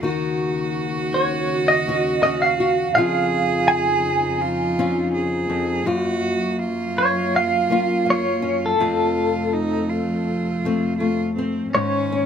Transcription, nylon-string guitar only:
0.03 D#3 F#4
1.88 C#4 F#4
2.25 C#4
2.60 F#4
2.95 F2 F3 C4 C#4 F4
4.79 C4 C#4 F4
5.50 F2
5.86 F#2 F4
7.70 A#3 C#4 F4
8.06 A#3
8.42 C#4
8.80 F2 C4
10.65 A3 C4
11.00 A3
11.38 C4
11.74 G#2
12.12 C#4

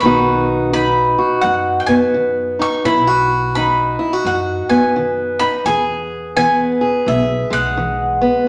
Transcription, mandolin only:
0.00 B5
0.74 B5
1.41 F#5
1.80 G5
1.86 G#5
2.62 C#6
2.85 B5
3.55 B5
4.27 F#5
4.69 G#5
5.39 B5
5.66 G#5
6.37 G#5
7.08 E5
7.53 F#5

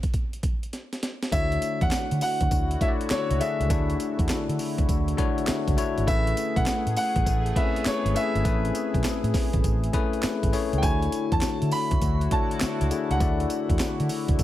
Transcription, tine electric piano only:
1.32 A3 D4 E4 F#4 C#5
2.81 A3 D4 E4 F#4 C#5
2.88 D5
3.40 A3 D4 E4 F#4 G#4
3.69 A3 D4 E4 F#4 A4
5.17 A3 D4 E4 F#4 C#5
5.77 A3 D4 E4 F#4 C#5
6.07 A3 C#4 E4 G#4 B4
7.56 A3 C4 E4 G#4 B4
7.62 C#4
8.14 A3 C#4 E4 G#4 B4
8.44 A3 C4 E4 G#4 B4
8.51 C#4
9.93 A3 C#4 E4 G#4 B4
10.52 A3 C#4 E4 G#4 C#5
10.82 A3 D4 E4 F#4 C#5
12.31 A3 D4 E4 F#4 C#5
12.90 A3 D4 E4 F#4 G#4
13.20 A3 D4 E4 F#4 D5

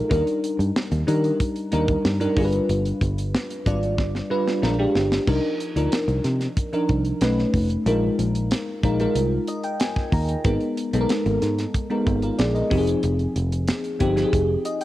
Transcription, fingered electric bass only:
0.11 D#2
0.59 G2
0.91 D#2
1.08 D#3
1.73 D#2
2.05 G2
2.37 G1
2.69 G1
3.01 G1
3.66 G#1
3.98 G1
4.63 A#1
4.95 G1
5.28 C2
5.76 D2
6.08 C2
6.24 C3
6.89 C2
7.21 B1
7.53 F1
7.86 A#1
8.19 A#1
8.83 A#1
9.15 C2
10.12 D#2
10.45 G#1
10.93 B1
11.26 G#1
11.42 G#2
12.07 G#1
12.39 A#1
12.71 F1
13.04 F1
13.36 F1
14.01 G1
14.33 F1

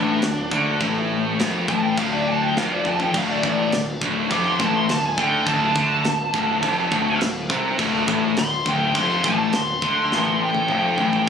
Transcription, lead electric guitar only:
Already playing: D4
1.69 A5
1.82 G5
1.98 F5
2.13 D5
2.27 A5
2.42 G5
2.57 F5
2.72 D5
2.87 A5
3.02 G5
3.17 F5
3.31 D5
3.45 D5
4.32 D6
4.46 C6
4.61 A5
4.76 C6
4.90 A5
5.05 G#5
5.19 G5
5.47 A5
8.39 C6
8.68 G5
8.95 C6
9.26 A5
9.55 C6
10.43 G5

